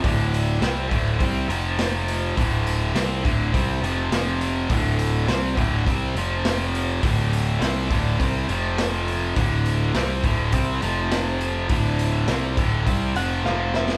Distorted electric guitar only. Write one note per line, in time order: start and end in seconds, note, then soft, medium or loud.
0.03 0.60 D2 medium
0.03 0.61 A2 medium
0.03 0.61 D3 medium
0.60 0.88 C3 medium
0.60 0.88 G3 medium
0.60 0.89 C4 loud
0.88 1.18 D2 medium
0.88 1.19 A2 medium
0.88 1.19 D3 medium
1.19 1.48 C3 medium
1.19 1.49 G3 medium
1.19 1.48 C4 loud
1.49 2.36 F2 medium
1.49 2.36 C3 medium
1.49 2.36 F3 medium
2.37 2.94 D2 medium
2.37 2.94 A2 medium
2.37 2.95 D3 loud
2.95 3.22 C3 medium
2.95 3.23 G3 medium
2.95 3.24 C4 medium
3.23 3.52 D2 medium
3.23 3.53 A2 medium
3.23 3.53 D3 loud
3.52 3.81 C3 medium
3.52 3.82 G3 medium
3.52 3.82 C4 medium
3.82 4.10 F2 medium
3.82 4.11 C3 medium
3.82 4.11 F3 medium
4.11 4.69 F2 medium
4.11 4.70 C3 medium
4.11 4.70 F3 medium
4.70 5.27 D2 medium
4.70 5.27 A2 medium
4.70 5.28 D3 medium
5.27 5.55 C3 medium
5.27 5.56 G3 medium
5.27 5.57 C4 loud
5.56 5.85 D2 medium
5.56 5.85 A2 loud
5.56 5.86 D3 loud
5.87 6.15 C3 medium
5.87 6.16 G3 loud
5.87 6.16 C4 loud
6.16 7.03 F2 medium
6.16 7.03 C3 medium
6.16 7.03 F3 medium
7.03 7.59 D2 medium
7.03 7.60 A2 loud
7.03 7.60 D3 medium
7.60 7.89 C3 medium
7.60 7.89 G3 loud
7.60 7.90 C4 loud
7.90 8.18 D2 medium
7.90 8.19 A2 loud
7.90 8.19 D3 medium
8.18 8.48 C3 medium
8.18 8.48 G3 medium
8.18 8.48 C4 medium
8.49 9.35 F2 medium
8.49 9.36 C3 medium
8.49 9.36 F3 loud
9.35 9.93 D2 medium
9.35 9.94 A2 medium
9.35 9.94 D3 loud
9.94 10.23 C3 medium
9.94 10.23 G3 loud
9.94 10.23 C4 loud
10.25 10.52 D2 medium
10.25 10.53 A2 medium
10.25 10.53 D3 medium
10.53 10.81 C3 medium
10.53 10.81 G3 medium
10.53 10.82 C4 medium
10.82 11.69 F2 medium
10.82 11.69 C3 medium
10.82 11.69 F3 medium
11.69 12.27 D2 medium
11.69 12.27 A2 medium
11.69 12.28 D3 loud
12.28 12.56 C3 medium
12.28 12.57 G3 loud
12.28 12.57 C4 medium
12.58 12.86 D2 medium
12.58 12.86 A2 medium
12.58 12.86 D3 loud
12.86 13.15 C3 medium
12.86 13.15 G3 medium
12.86 13.15 C4 medium
13.16 13.44 F2 medium
13.16 13.44 C3 medium
13.16 13.45 F3 loud
13.46 13.97 F2 medium
13.46 13.97 C3 medium
13.46 13.97 F3 loud